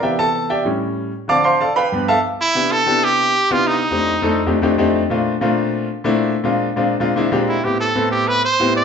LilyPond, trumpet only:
\new Staff \with { instrumentName = "Trumpet" } { \time 4/4 \key c \major \tempo 4 = 189 r1 | r2. r8 e'8~ | e'8 a'4 g'4. f'8 ees'8~ | ees'2~ ees'8 r4. |
r1 | r2. r8 e'8 | g'8 a'4 g'8 b'8 c''4 ees''8 | }